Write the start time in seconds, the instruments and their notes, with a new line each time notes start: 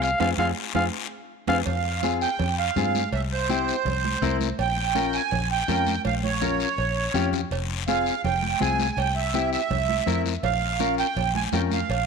Already playing: fingered electric bass C2
0.02 clarinet F5, high timbale, short guiro
0.20 fingered electric bass F2, clean electric guitar C4 F4 G#4, clarinet F5, high conga, high timbale, long guiro
0.38 fingered electric bass F2, clean electric guitar C4 F4 G#4, clarinet F5, high conga, high timbale, long guiro
0.75 fingered electric bass F2, clean electric guitar C4 F4 G#4, clarinet F5, high conga, high timbale
1.47 fingered electric bass F2, clean electric guitar C4 F4 G#4, clarinet F5, high conga, high timbale, long guiro
1.66 fingered electric bass F2, accordion F5, cowbell, low conga, long guiro
1.85 high conga
2.03 clean electric guitar C4 F4 G#4, high conga, short guiro
2.21 accordion G5, short guiro
2.39 fingered electric bass F2, cowbell, high conga, low conga, long guiro
2.59 accordion F5
2.76 fingered electric bass G2, clean electric guitar C4 F4 G#4, high conga, low conga, short guiro
2.95 high conga, short guiro
3.12 fingered electric bass C2, accordion E5, cowbell, long guiro
3.32 accordion C5, high conga
3.49 clean electric guitar C4 E4 G4, high conga, short guiro
3.68 short guiro
3.85 fingered electric bass C2, cowbell, high conga, low conga, long guiro
4.04 high conga
4.22 fingered electric bass C2, clean electric guitar C4 E4 A#4, high conga, low conga, short guiro
4.41 high conga, short guiro
4.59 fingered electric bass A#1, accordion G5, cowbell, long guiro
4.77 high conga
4.95 clean electric guitar C#4 F4 A#4, high conga, short guiro
5.13 accordion G#5, short guiro
5.31 fingered electric bass A#1, cowbell, high conga, low conga, long guiro
5.51 accordion G5
5.68 fingered electric bass F2, clean electric guitar C#4 F4 A#4, high conga, low conga, short guiro
5.87 high conga, short guiro
6.05 fingered electric bass A#1, accordion F5, cowbell, high conga, long guiro
6.24 accordion C#5, high conga
6.42 clean electric guitar C#4 F4 A#4, low conga, short guiro
6.60 short guiro
6.78 fingered electric bass A#1, cowbell, long guiro
7.14 fingered electric bass F2, clean electric guitar C#4 F4 G4, low conga, low timbale, short guiro
7.33 low conga, short guiro
7.51 fingered electric bass F1, cowbell, long guiro
7.70 high conga
7.88 clean electric guitar C4 F4 G#4, accordion F5, high conga, short guiro
8.06 short guiro
8.24 fingered electric bass F1, accordion G5, cowbell, high conga, low conga, long guiro
8.42 high conga
8.60 fingered electric bass C2, clean electric guitar C4 F4 G#4, accordion G#5, high conga, low conga, short guiro
8.79 high conga, short guiro
8.97 fingered electric bass C2, accordion G5, cowbell, long guiro
9.16 accordion E5, high conga
9.34 clean electric guitar C4 E4 G4, high conga, short guiro
9.53 accordion E5, short guiro
9.70 fingered electric bass C2, cowbell, high conga, low conga, long guiro
9.89 high conga
10.06 fingered electric bass F2, clean electric guitar C4 E4 A#4, high conga, low conga, short guiro
10.25 high conga, short guiro
10.43 fingered electric bass A#1, accordion F5, cowbell, low conga, long guiro
10.62 high conga
10.80 clean electric guitar C#4 F4 A#4, high conga, short guiro
10.98 accordion G5, short guiro
11.16 fingered electric bass A#1, cowbell, high conga, low conga, long guiro
11.35 accordion G#5, high conga
11.52 fingered electric bass F2, clean electric guitar C#4 F4 A#4, accordion G5, high conga, low conga, low timbale, short guiro
11.71 accordion F5, high conga, short guiro
11.89 fingered electric bass A#1, cowbell, long guiro